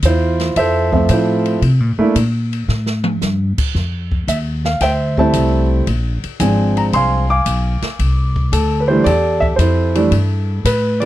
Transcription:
0.02 upright bass E2, grand piano E4 F4 C5, kick, hi-hat pedal, ride
0.39 snare, ride
0.56 upright bass F2, grand piano A4 C5 E5, kick, ride
0.92 grand piano F3 A3 C4 E5, kick
1.09 upright bass A2, grand piano C5, kick, hi-hat pedal, ride
1.13 grand piano E4 F4
1.46 ride
1.62 upright bass C3, kick, ride
1.80 upright bass A#2
1.98 upright bass G2, grand piano A3 A#3 D4 E4
2.15 upright bass A#2, kick, hi-hat pedal, ride
2.53 ride
2.68 upright bass A2, snare
2.86 snare
3.04 mid tom
3.21 upright bass G2, snare, hi-hat pedal
3.58 muted upright bass stroke, kick, crash
3.75 upright bass F2, kick, snare
4.11 kick
4.28 upright bass D#2, grand piano E5, kick, hi-hat pedal, ride
4.65 grand piano F5, snare
4.80 upright bass D2, grand piano C5 E5 G5, kick, snare, ride
5.17 grand piano G3 A3 C4 E4 C5 E5 A5, kick
5.33 upright bass C2, kick, hi-hat pedal, ride
5.87 upright bass A#1, kick, ride
6.24 muted upright bass stroke, ride
6.40 upright bass G#1, grand piano F3 G#3 C4 D4 G#5, kick, hi-hat pedal, ride
6.77 grand piano A#5, ride
6.93 upright bass C2, grand piano F5 G#5 C6, kick, ride
7.30 grand piano F5 G#5 D6
7.46 upright bass B1, kick, hi-hat pedal, ride
7.82 muted upright bass stroke, snare, ride
7.99 upright bass C2, kick, ride
8.36 kick
8.52 upright bass D2, grand piano A4, hi-hat pedal, ride
8.80 grand piano B4
8.88 grand piano E3 G3 A3 D4 C5
9.04 upright bass E2, grand piano G4 A4 D5, kick, ride
9.40 grand piano E5, kick
9.56 upright bass F2, grand piano E4 A4 C5, hi-hat pedal, ride
9.95 grand piano E3 G3 A3 D4, ride
10.11 upright bass G2, kick, ride
10.65 upright bass A2, grand piano B4, kick, hi-hat pedal, ride
11.00 grand piano E3 G3 A#3 D5, ride

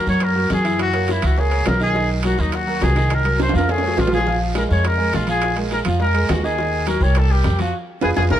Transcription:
0.07 upright bass F#2, grand piano F#3 F#4 A#4, trumpet C#5, short guiro
0.20 trumpet A#4, high bongo, high timbale, long guiro
0.35 grand piano F#3 F#4 A#4
0.50 upright bass F#2, trumpet G#4, high bongo, low bongo, high timbale, short guiro
0.64 grand piano E3 E4 E5, high timbale, short guiro
0.79 trumpet F#4, high bongo, high timbale, long guiro
0.93 grand piano A#3 A#4 C#5, high bongo, high timbale
1.08 trumpet E4, high bongo, high timbale, short guiro
1.22 upright bass C#2, grand piano E3 E4 E5, trumpet F#4, high bongo, high timbale, short guiro
1.36 grand piano A#3 A#4 C#5, trumpet G#4, high bongo, long guiro
1.51 grand piano A#3 A#4 C#5, high timbale
1.65 upright bass B1, trumpet A#4, high bongo, low bongo, high timbale, low timbale, short guiro
1.80 grand piano D#3 D#4 D#5, trumpet G#4, high bongo, short guiro
1.94 grand piano D#3 D#4 D#5, high bongo, long guiro
2.23 grand piano F#3 F#4 A#4, trumpet F#4, high bongo, high timbale, short guiro
2.37 upright bass D#2, grand piano F#3 F#4 A#4, trumpet D#4, short guiro
2.52 trumpet F#4, high bongo, high timbale, long guiro
2.67 grand piano F#3 F#4 A#4
2.81 upright bass C2, trumpet G#4, high bongo, low bongo, high timbale, low timbale, short guiro
2.95 grand piano D#3 D#4 D#5, high timbale, short guiro
3.10 trumpet A#4, high bongo, high timbale, long guiro
3.25 grand piano F#3 F#4 A#4, high bongo, high timbale
3.40 trumpet C5, high bongo, high timbale, short guiro
3.49 grand piano F3, high timbale
3.54 upright bass F2, grand piano F4 F5, trumpet A#4, high bongo, short guiro
3.59 high timbale
3.68 grand piano A3 A4 C#5, trumpet G#4, high bongo, high timbale, long guiro
3.78 high timbale
3.82 grand piano A3 A4 C#5
3.87 low timbale
3.97 upright bass A#1, trumpet F4, high bongo, low bongo, low timbale, short guiro
4.07 low timbale
4.12 grand piano F3 F4 F5, trumpet G#4, high bongo, short guiro
4.17 low timbale
4.27 grand piano F3 F4 F5, high bongo, long guiro
4.55 grand piano G#3 G#4 A#4, trumpet A#4, high bongo, high timbale, short guiro
4.69 upright bass F2, grand piano G#3 G#4 A#4, trumpet C#5, short guiro
4.84 trumpet A#4, high bongo, high timbale, long guiro
4.98 grand piano G#3 G#4 A#4
5.13 upright bass A#1, trumpet F4, high bongo, low bongo, high timbale, short guiro
5.27 grand piano F3 F4 F5, trumpet G#4, high timbale, short guiro
5.42 high bongo, high timbale, long guiro
5.56 grand piano G#3 G#4 A#4, high bongo, high timbale
5.71 trumpet A#4, high bongo, high timbale, short guiro
5.85 upright bass F2, grand piano F3 F4 F5, high bongo, high timbale, short guiro
6.00 grand piano G#3 G#4 A#4, trumpet A#4, high bongo, long guiro
6.14 grand piano G#3 G#4 A#4, high timbale
6.29 upright bass D#2, trumpet F#4, high bongo, low bongo, high timbale, low timbale, short guiro
6.43 grand piano D#3 D#4 D#5, trumpet G#4, high bongo, short guiro
6.58 grand piano D#3 D#4 D#5, high bongo, long guiro
6.86 grand piano F#3 F#4 A#4, trumpet A#4, high bongo, high timbale, short guiro
7.00 upright bass C2, grand piano G3 G4 A#4, trumpet C#5, short guiro
7.15 trumpet A4, high bongo, high timbale, long guiro
7.30 grand piano G3 G4 A#4, trumpet G4
7.44 upright bass F2, high bongo, low bongo, high timbale, short guiro
7.59 grand piano F3 F4 F5, trumpet F#4, high timbale, short guiro
8.01 upright bass F2, grand piano F4 G#4 B4, trumpet G#4, high bongo, high timbale, long guiro
8.16 upright bass F2, grand piano F4 G#4 B4, trumpet G#4, high bongo, high timbale, long guiro
8.30 upright bass A#1, grand piano F4 G#4 A#4, trumpet A#4, high bongo, high timbale, long guiro

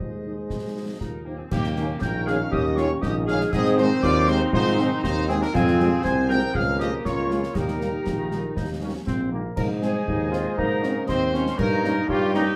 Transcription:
Already playing: woodwind section C5 D#5
0.00 tuba D#2, trombone section G#3, euphonium F4, concert bass drum
0.24 french horn section D#4 C5, euphonium D#4, trumpet section D#5
0.50 tuba G#2, concert bass drum, snare
0.76 french horn section D#4 C5, trumpet section D#5
1.00 tuba D#2, woodwind section D#4, euphonium F4, trumpet section A#4, piccolo A#5, concert bass drum, snare
1.25 woodwind section A#3, french horn section D#4 C5, trumpet section G4 D#5, piccolo G5
1.38 woodwind section C4, trumpet section G#4, piccolo G#5
1.50 tuba D#2, trombone section D#3 C#4, woodwind section A#3, trumpet section G4, piccolo G5, concert bass drum, snare, crash
1.64 snare
1.76 french horn section D#3 A#3 C#4, snare
2.01 tuba A#1, euphonium D#4, woodwind section A#4, trumpet section G5, piccolo G6, concert bass drum, snare
2.26 french horn section D#3 A#3 C#4, woodwind section G#4, trumpet section F5, piccolo F6, snare
2.51 tuba D#2, woodwind section G4, euphonium G4, trumpet section D#5, piccolo D#6, concert bass drum
2.76 french horn section D#3 A#3 C#4, woodwind section F4, trumpet section C#5, piccolo C#6, snare
3.01 tuba A#1, euphonium D#4, woodwind section G4, trumpet section D#5, piccolo D#6, concert bass drum, snare
3.27 french horn section D#3 A#3 C#4, woodwind section G#4, trumpet section F5, piccolo F6, snare
3.40 snare
3.52 tuba G#2, trombone section D#3 C4, euphonium C4, woodwind section G#4, trumpet section D#5, piccolo D#6, concert bass drum, snare, crash
3.65 snare
3.78 french horn section D#3 G#3 C4, woodwind section D#4, trumpet section C5, piccolo C6, snare
4.03 tuba D#2, woodwind section F4, trumpet section D5, piccolo D6, concert bass drum, snare
4.28 french horn section D#3 G#3 C4, woodwind section D#4, trumpet section C5, piccolo C6, snare
4.53 tuba G#2, woodwind section D#4, euphonium F4, trumpet section C5, piccolo C6, concert bass drum
4.78 french horn section D#3 G#3 C4, euphonium D#4, snare
5.03 tuba D#2, woodwind section D#4, trumpet section C5, piccolo C6, concert bass drum, snare
5.28 french horn section D#3 G#3 C4, woodwind section C4, trumpet section G#4, piccolo G#5, snare
5.41 woodwind section D4, trumpet section A#4, piccolo A#5, snare
5.53 tuba F2, trombone section F3 C4, woodwind section C4, euphonium F4, trumpet section G#4, piccolo G#5, concert bass drum, snare, crash
5.67 snare
5.79 french horn section F3 G#3 C4, snare
6.04 tuba C2, euphonium C4, woodwind section C5, trumpet section G#5, piccolo G#6, concert bass drum, snare
6.29 french horn section F3 G#3 C4, woodwind section A#4, trumpet section G5, piccolo G6, snare
6.54 tuba C#2, trombone section G#3 A#3, woodwind section G#4, trumpet section F5, piccolo F6, concert bass drum
6.79 french horn section F3 G#3 A#3, woodwind section G4, trumpet section D#5, piccolo D#6, snare
7.05 tuba C#2, euphonium C#4, woodwind section F4, trumpet section C#5, piccolo C#6, concert bass drum, snare
7.30 french horn section F3 G#3 A#3, euphonium F4, snare
7.43 snare
7.54 tuba D#2, trombone section G3 A#3, woodwind section D#4, euphonium G4, trumpet section A#4, piccolo A#5, concert bass drum, snare, crash
7.68 snare
7.81 french horn section D#3 G3 A#3, snare
8.06 tuba A#1, trombone section D#3, concert bass drum, snare
8.31 french horn section D#3 G3 A#3, snare
8.56 tuba D#2, trombone section D#4, concert bass drum, snare
8.80 french horn section D#3 G3 A#3, trombone section C#4
9.06 tuba A#1, trombone section C4, concert bass drum, snare
9.32 french horn section D#3 G3 A#3, trombone section A#3
9.56 tuba G#2, euphonium A#3, trumpet section A#4, woodwind section C5 D#5, piccolo A#5, concert bass drum, crash
9.81 euphonium G#3, french horn section C4, trumpet section G#4, piccolo G#5, snare
10.07 tuba D#2, trombone section D#4, concert bass drum
10.32 french horn section C4, trombone section F4, snare
10.57 tuba G#2, euphonium A#3, trombone section D#4, trumpet section A#4, piccolo A#5, concert bass drum
10.83 french horn section C4, trombone section C#4, snare
11.07 tuba D#2, euphonium C4, trombone section C4, woodwind section C5 D#5, trumpet section C5, piccolo C6, concert bass drum, snare
11.33 french horn section C4, trombone section C#4, snare
11.47 snare
11.57 tuba G2, euphonium A#3, woodwind section D#4 C#5, trombone section D#4, trumpet section A#4, piccolo A#5, concert bass drum, crash
11.83 french horn section A#3 C#4 D#4, snare
12.07 tuba G2, euphonium G3, woodwind section D#4 C#5, trombone section F4, trumpet section G4, piccolo G5, concert bass drum
12.34 french horn section A#3 C#4 D#4, trombone section D#4, snare

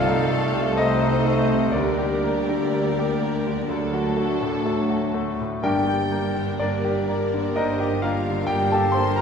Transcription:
Already playing: grand piano C2 F4 F5, double bass section C2, cello section C2, viola section A3 C4, french horn section A3 D#4, bassoon A3, clarinet C4, violin section A4 F5, cor anglais A4, flute D5
0.07 grand piano D#4
0.30 viola section G3, grand piano A3
0.54 grand piano C3
0.74 flute C5, grand piano D#5, violin section D#5
0.78 viola section A3 D#4, grand piano A3 D#4, french horn section A3 D#4, violin section C5
1.01 grand piano D#4
1.24 viola section A3, grand piano A3
1.51 grand piano C3
1.72 grand piano D2 D4 D5, cello section D2, double bass section D2, viola section G3 G4, bassoon G3, clarinet D4, cor anglais A#4, flute A#4, violin section A#4 D5
1.77 french horn section A#3 G4
1.98 grand piano G4
2.24 grand piano A#3
2.49 grand piano D3
2.73 grand piano A#3
2.99 grand piano G4
3.23 grand piano A#3
3.47 grand piano D3
3.68 double bass section D2, cello section D2, grand piano D2, viola section F#3 D4, french horn section A3 F#4, cor anglais A4, violin section A4
3.93 grand piano F#4
4.17 grand piano A3
4.41 grand piano A2
4.65 bassoon F#3, grand piano A3
4.90 grand piano F#4
5.14 grand piano A3
5.40 grand piano A2
5.61 double bass section G1, cello section G2, grand piano G2 G4 G5, bassoon G3, french horn section A#3 G4, clarinet D4, cor anglais A#4, flute D5, violin section G5
5.87 grand piano G4
6.11 viola section G3 D4, grand piano A#3, violin section A#4
6.35 grand piano D3
6.59 double bass section G1, cello section G2, grand piano A#3 D4 D5, french horn section A#3 G4, flute A#4, violin section D5
6.85 grand piano G4
7.07 viola section G3 D4, grand piano A#3, violin section A#4
7.34 grand piano D3
7.55 double bass section G1, cello section G2, bassoon G3, grand piano A#3 D#4 D#5, clarinet D4, cor anglais A#4, flute C5, violin section D#5
7.80 grand piano G4
8.02 viola section G3 D4, grand piano A#3 F4 F5, violin section A#4 F5, flute D5
8.29 grand piano D3
8.47 double bass section G1, cello section G2, grand piano A#3 G4 G5, french horn section G4, flute D5, violin section G5
8.51 french horn section A#3
8.72 grand piano G4 A4 A5, flute F5, violin section A5
8.92 viola section G3 D4, grand piano C5 C6, flute A5, violin section C6
8.96 grand piano A#3, violin section A#4
9.15 grand piano A#4 A#5, violin section A#5

